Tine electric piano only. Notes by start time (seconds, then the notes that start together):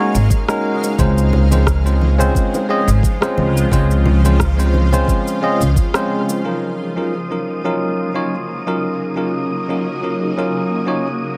Already playing: G#3 C#4 D#4 F#4 C#5
0.49 G#3 C#4 D#4 F#4 A#4
0.98 G#3 C4 C#4 F4 C5
1.51 G#3 C4 C#4 F4 C5
1.84 G#3 C4 C#4 F4 C5
2.18 G#3 C4 C#4 F4 C5
2.69 G#3 C4 C#4 F4 D#5
3.21 G#3 C4 C#4 F4 C5
3.71 G#3 C4 C#4 F4 C5
4.24 G#3 C4 C#4 F4 C5
4.58 G#3 C4 C#4 F4 C5
4.92 G#3 C4 C#4 F4 C5
5.42 G#3 C4 C#4 F4 D#5
5.94 G#3 C4 C#4 F4 C5
6.44 F#3 C#4 D#4 F4 A#4
6.96 F#3 C#4 D#4 F4 A#4
7.31 F#3 C#4 D#4 F4 A#4
7.64 F#3 C#4 D#4 F4 A#4
8.14 F#3 C#4 D#4 F4 C#5
8.67 F#3 C#4 D#4 F4 A#4
9.16 F#3 C#4 D#4 F4 A#4
9.69 F#3 C#4 D#4 F4 A#4
10.03 F#3 C#4 D#4 F4 A#4
10.37 F#3 C#4 D#4 F4 A#4
10.86 F#3 C#4 D#4 F4 C#5